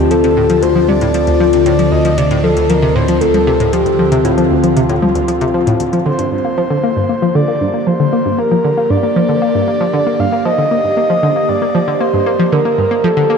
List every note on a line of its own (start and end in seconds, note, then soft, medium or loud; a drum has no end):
0.00 6.29 D2 medium
0.00 6.32 D3 medium
0.00 6.32 C4 medium
0.00 8.04 F4 medium
0.00 0.12 G4 loud
0.00 7.10 C5 medium
0.00 7.76 A5 medium
0.10 0.15 F3 medium
0.10 0.64 A4 loud
0.10 closed hi-hat medium
0.24 0.28 C3 medium
0.24 closed hi-hat soft
0.37 0.43 A2 loud
0.50 0.56 F3 medium
0.50 closed hi-hat soft
0.62 0.69 D2 medium
0.62 0.90 C5 loud
0.62 closed hi-hat medium
0.76 0.79 F3 medium
0.88 0.92 C3 loud
0.88 1.65 D5 loud
0.88 high tom medium
1.01 1.08 A2 medium
1.01 closed hi-hat soft
1.14 1.21 F3 medium
1.14 closed hi-hat medium
1.27 1.34 D2 medium
1.27 closed hi-hat soft
1.40 1.44 F3 medium
1.53 1.57 C3 loud
1.53 closed hi-hat soft
1.66 1.72 A2 loud
1.66 1.90 D5 loud
1.66 closed hi-hat medium
1.79 1.85 F3 medium
1.79 closed hi-hat soft
1.92 1.98 D2 medium
1.92 2.19 D#5 medium
2.05 2.09 F3 medium
2.05 closed hi-hat soft
2.18 2.22 C3 loud
2.18 2.45 D5 loud
2.18 closed hi-hat medium
2.31 2.37 A2 loud
2.31 closed hi-hat soft
2.43 2.50 F3 medium
2.43 2.71 A4 medium
2.57 2.63 D2 medium
2.57 closed hi-hat medium
2.69 2.73 F3 medium
2.69 2.97 A#4 medium
2.69 closed hi-hat medium
2.82 2.86 C3 loud
2.95 3.02 A2 loud
2.95 3.23 C5 medium
3.08 3.15 F3 medium
3.08 closed hi-hat soft
3.21 3.28 D2 medium
3.21 3.72 A4 loud
3.21 closed hi-hat medium
3.34 3.38 F3 medium
3.34 closed hi-hat soft
3.34 high tom medium
3.47 3.51 C3 loud
3.60 3.67 A2 loud
3.60 closed hi-hat soft
3.73 3.79 F3 medium
3.73 4.26 G4 medium
3.73 closed hi-hat medium
3.86 3.92 D2 medium
3.86 closed hi-hat soft
3.99 4.03 F3 medium
4.12 4.16 C3 loud
4.12 closed hi-hat soft
4.25 4.31 A2 loud
4.25 6.05 F4 medium
4.25 closed hi-hat medium
4.38 4.44 F3 medium
4.38 closed hi-hat soft
4.51 4.57 D2 medium
4.64 4.67 F3 medium
4.64 closed hi-hat soft
4.77 4.80 C3 loud
4.77 closed hi-hat medium
4.89 4.96 A2 loud
4.89 closed hi-hat soft
5.02 5.09 F3 medium
5.02 high tom medium
5.15 5.22 D2 medium
5.15 closed hi-hat soft
5.28 5.32 F3 medium
5.28 closed hi-hat medium
5.41 5.45 C3 loud
5.41 closed hi-hat soft
5.54 5.64 F3 medium
5.67 5.73 A2 loud
5.67 closed hi-hat soft
5.80 5.84 D2 medium
5.80 closed hi-hat medium
5.93 5.99 F3 medium
5.93 closed hi-hat soft
6.06 6.10 D3 medium
6.06 6.30 C5 medium
6.19 6.25 G2 medium
6.19 closed hi-hat soft
6.32 6.38 G2 medium
6.32 13.38 A#3 medium
6.32 7.37 C5 loud
6.45 6.48 A#3 medium
6.58 6.61 F3 loud
6.70 6.77 D3 medium
6.83 6.90 A#3 medium
6.96 7.03 G2 medium
7.01 13.38 G4 medium
7.09 7.13 A#3 medium
7.22 7.26 F3 medium
7.35 7.42 D3 loud
7.35 7.80 D5 loud
7.48 7.54 A#3 medium
7.61 7.67 G2 medium
7.74 7.78 A#3 medium
7.80 7.89 D5 medium
7.87 7.91 F3 loud
7.87 8.40 C5 loud
8.00 8.06 D3 loud
8.13 8.19 A#3 medium
8.26 8.32 G2 medium
8.39 8.42 A#3 medium
8.39 8.92 A#4 medium
8.51 8.55 F3 loud
8.64 8.71 D3 loud
8.77 8.84 A#3 medium
8.90 8.97 G2 medium
8.90 10.21 D5 loud
9.03 9.07 A#3 medium
9.16 9.20 F3 loud
9.29 9.35 D3 medium
9.42 9.48 A#3 medium
9.55 9.61 G2 medium
9.68 9.72 A#3 medium
9.80 9.84 F3 loud
9.93 10.00 D3 loud
10.07 10.13 A#3 medium
10.19 10.26 G2 medium
10.19 10.45 F5 loud
10.32 10.36 A#3 medium
10.45 10.49 F3 loud
10.45 11.50 D#5 loud
10.58 10.65 D3 loud
10.71 10.78 A#3 medium
10.84 10.91 G2 medium
10.97 11.01 A#3 medium
11.10 11.14 F3 loud
11.23 11.29 D3 loud
11.36 11.42 A#3 medium
11.49 11.55 G2 medium
11.49 12.02 D5 loud
11.62 11.66 A#3 medium
11.75 11.79 F3 loud
11.88 11.94 D3 medium
12.00 12.07 A#3 medium
12.00 12.54 C5 loud
12.14 12.20 G2 medium
12.26 12.30 A#3 medium
12.39 12.43 F3 loud
12.52 12.59 D3 loud
12.52 13.05 A#4 medium
12.65 12.72 A#3 medium
12.78 12.85 G2 medium
12.91 12.95 A#3 medium
13.04 13.08 F3 loud
13.04 13.38 A4 loud
13.17 13.23 D3 loud
13.30 13.36 A#3 medium